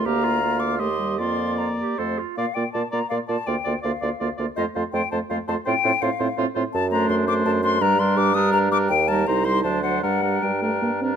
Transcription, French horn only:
\new Staff \with { instrumentName = "French horn" } { \time 3/4 \key bes \major \tempo 4 = 164 bes4 bes4 a8 g8 | bes2 a8 r8 | bes8 bes8 bes8 bes8 bes8 bes8 | bes8 bes8 bes8 bes8 bes8 bes8 |
a8 a8 a8 a8 a8 a8 | c'8 c'8 c'8 c'8 c'8 c'8 | \key g \minor r8 a4 a4 a8 | g8 g4 g4 g8 |
r8 g8 g8 g8 fis8 fis8 | g8 g8 g8 a8 bes8 c'8 | }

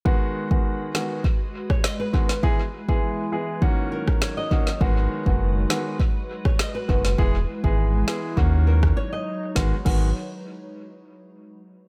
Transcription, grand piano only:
\new Staff \with { instrumentName = "Grand piano" } { \time 4/4 \key gis \minor \tempo 4 = 101 <dis gis b fis'>8. <dis gis b fis'>8. <dis gis b fis'>8 r4. <dis gis b fis'>16 r16 | <e gis b gis'>16 r8 <e gis b gis'>8. <e gis b gis'>8 <dis ais cis' fis'>4. <dis ais cis' fis'>16 r16 | <dis gis b fis'>8. <dis gis b fis'>8. <dis gis b fis'>8 r4. <dis gis b fis'>16 r16 | <e gis b gis'>16 r8 <e gis b gis'>8. <e gis b gis'>8 <dis ais cis' fis'>4 r4 |
<dis gis b fis'>16 r16 <dis gis b fis'>8 r2. | }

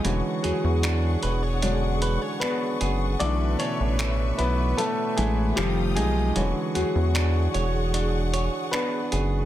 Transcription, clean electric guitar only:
\new Staff \with { instrumentName = "Clean electric guitar" } { \time 4/4 \key e \mixolydian \tempo 4 = 76 e8 gis'8 d'8 b'16 cis''16 d'8 b'16 cis''16 d'8 gis'8 | b,8 d'8 a8 e'8 a8 e'8 f8 ees'8 | e8 gis'8 d'8 cis''8 d'8 cis''8 d'8 gis'8 | }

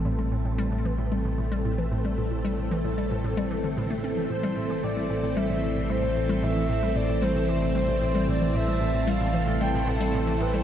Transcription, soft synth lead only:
\new Staff \with { instrumentName = "Soft synth lead" } { \time 4/4 \key a \minor \tempo 4 = 113 r1 | r1 | c''4 d''4 e''4 c''4 | e''4 d''8 c''4 c''4 d''8 |
e''4 f''4 g''8 a'4 b'16 c''16 | }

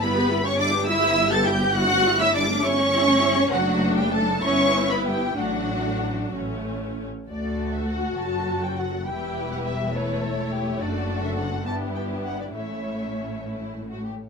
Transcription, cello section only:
\new Staff \with { instrumentName = "Cello section" } { \time 6/8 \key d \major \tempo 4. = 68 b8. cis'16 d'8 e'8. a'16 g'8 | fis'8. e'16 d'8 cis'4. | fis8. g16 a8 cis'8. b16 g8 | fis4. r4. |
d,4. fis,4. | e,2. | fis,4. g,4. | a,2~ a,8 r8 | }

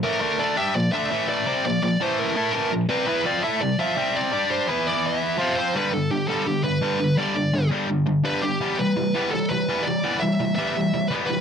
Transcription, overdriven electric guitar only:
\new Staff \with { instrumentName = "Overdriven electric guitar" } { \clef bass \time 4/4 \key g \major \tempo 4 = 168 <a, e a>8 <d a d'>8 <d a d'>8 <g d' g'>8 <bes, f>8 <d a d'>8 <a, e a>4 | <c g c'>8 <bes, f>8 <bes, f>8 <a, e a>4 <a e' a'>8 <a, e a>8 <bes, f>8 | <c g c'>8 <e b e'>8 <f c' f'>8 <a e' a'>8 <c g>8 <f c' f'>8 <c g c'>4 | <g d' g'>4 <e b e'>2 <f c' f'>4 |
<g, d g>8 <g, d>8 <g, d>8 <g, d g>8 <g, d>8 <g, d>8 <g, d g>8 <g, d>8 | <g, d g>8 <g, d>8 <g, d>8 <g, d g>8 <g, d>8 <g, d>8 <g, d g>8 <g, d>8 | <e g b>8 <e g>8 <e g>8 <e g b>8 <e g>8 <e g>8 <e g b>8 <e g>8 | <e g b>8 <e g>8 <e g>8 <e g b>8 <e g>8 <e g>8 <e g b>8 <e g>8 | }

